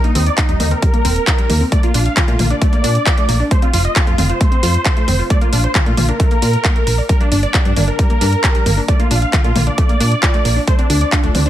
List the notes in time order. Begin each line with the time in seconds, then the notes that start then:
0.04 A#3 D#4, closed hi-hat
0.15 D#2 C4 D#4, open hi-hat
0.26 D5, closed hi-hat
0.38 D#4, kick, clap, closed hi-hat
0.49 D#1 G3 D#4, closed hi-hat
0.60 D#2 A#3 D#4, open hi-hat, mid tom
0.71 C4 A#4, closed hi-hat
0.82 G3, kick, closed hi-hat
0.94 A#3, closed hi-hat
1.05 D#1 C4, open hi-hat
1.16 closed hi-hat
1.27 D#4, kick, clap, closed hi-hat
1.38 G3, closed hi-hat
1.50 D#2 A#3, open hi-hat, mid tom
1.61 C4
1.72 A3 D5, kick, closed hi-hat
1.83 A#3 F4, closed hi-hat
1.94 A#1 D4 F4, open hi-hat
2.06 F5, closed hi-hat
2.17 F4, kick, clap, closed hi-hat, mid tom
2.28 A#2 A3 F4, closed hi-hat
2.39 A#1 A#3 F4, open hi-hat, mid tom
2.50 D4 D5, closed hi-hat
2.62 A3, kick, closed hi-hat
2.73 A#3, closed hi-hat
2.84 A#2 D4, open hi-hat
2.95 closed hi-hat
3.06 F4, kick, clap, closed hi-hat
3.18 A3, closed hi-hat
3.29 A#1 A#3, open hi-hat
3.40 D4
3.51 A3 C5, kick, closed hi-hat
3.62 C4 F4, closed hi-hat
3.73 F1 F4, open hi-hat
3.85 D#5, closed hi-hat
3.96 F4 A4, kick, clap, closed hi-hat
4.07 F2 A3 F4, closed hi-hat
4.18 F1 C4 F4, open hi-hat, mid tom
4.29 F4 C5, closed hi-hat
4.41 A3, kick, closed hi-hat
4.52 C4, closed hi-hat
4.63 F2 F4, open hi-hat
4.74 closed hi-hat
4.85 A4, kick, clap, closed hi-hat
4.97 A3, closed hi-hat
5.08 F1 C4, open hi-hat, mid tom
5.19 F4
5.30 A3 D5, kick, closed hi-hat
5.41 A#3 F4, closed hi-hat
5.53 A#1 D4 F4, open hi-hat
5.64 C5, closed hi-hat
5.75 F4, kick, clap, closed hi-hat, mid tom
5.86 A#2 A3 F4, closed hi-hat
5.97 A#1 A#3 F4, open hi-hat, mid tom
6.09 D4 A#4, closed hi-hat
6.20 A3, kick, closed hi-hat
6.31 A#3, closed hi-hat
6.42 A#2 F4, open hi-hat
6.53 closed hi-hat
6.65 A#3, kick, clap, closed hi-hat
6.76 A3, closed hi-hat
6.87 A#1 A#4, open hi-hat
6.98 D5
7.09 G3 A#4, kick, closed hi-hat
7.21 A#3 D4, closed hi-hat
7.32 G1 D4, open hi-hat
7.43 D5, closed hi-hat
7.54 D4 G4, kick, clap, closed hi-hat
7.65 G2 G3 D4, closed hi-hat
7.76 G1 A#3 D4, open hi-hat, mid tom
7.88 D4 A#4, closed hi-hat
7.99 G3, kick, closed hi-hat
8.10 A#3, closed hi-hat
8.21 G2 D4, open hi-hat
8.32 closed hi-hat
8.44 G4, kick, clap, closed hi-hat
8.55 G3, closed hi-hat
8.66 G1 A#3, open hi-hat, mid tom
8.77 D4
8.88 A3 D5, kick, closed hi-hat
9.00 A#3 F4, closed hi-hat
9.11 A#1 D4 F4, open hi-hat
9.22 F5, closed hi-hat
9.33 F4, kick, clap, closed hi-hat, mid tom
9.44 A#2 A3 F4, closed hi-hat
9.56 A#1 A#3 F4, open hi-hat, mid tom
9.67 D4 D5, closed hi-hat
9.78 A3, kick, closed hi-hat
9.89 A#3, closed hi-hat
10.00 A#2 D4, open hi-hat
10.12 closed hi-hat
10.23 F4, kick, clap, closed hi-hat
10.34 A3, closed hi-hat
10.45 A#1 A#3, open hi-hat
10.56 D4
10.67 A3 C5, kick, closed hi-hat
10.79 C4 D4, closed hi-hat
10.90 D2 D4, open hi-hat
11.01 D5, closed hi-hat
11.12 D4 F4, kick, clap, closed hi-hat
11.23 D1 A3 D4, closed hi-hat
11.35 D2 C4 D4, open hi-hat, mid tom
11.46 D4 C5, closed hi-hat